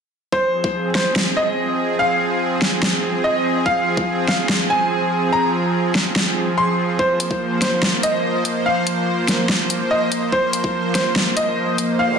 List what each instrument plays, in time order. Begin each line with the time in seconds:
0.32 supersaw synth F3 C4 G#4, grand piano C5, kick
0.64 kick
0.95 grand piano C5, snare
1.16 snare
1.37 grand piano D#5
1.99 grand piano F5
2.62 snare
2.83 snare
3.24 grand piano D#5
3.66 grand piano F5, kick
3.97 kick
4.28 grand piano F5, snare
4.49 snare
4.70 grand piano G#5
5.33 grand piano A#5
5.95 kick, snare
6.16 snare
6.58 grand piano C6
6.99 supersaw synth A#3 C5, grand piano C5, kick
7.20 closed hi-hat
7.31 kick
7.62 grand piano C5, snare, closed hi-hat
7.83 snare
8.03 grand piano D#5, closed hi-hat
8.45 closed hi-hat
8.66 grand piano F5
8.87 closed hi-hat
9.28 snare, closed hi-hat
9.49 snare
9.70 closed hi-hat
9.91 grand piano D#5
10.12 closed hi-hat
10.32 grand piano C5, kick
10.53 closed hi-hat
10.64 kick
10.95 grand piano C5, snare, closed hi-hat
11.16 snare
11.37 grand piano D#5, closed hi-hat
11.78 closed hi-hat
11.99 grand piano F5, noise sweep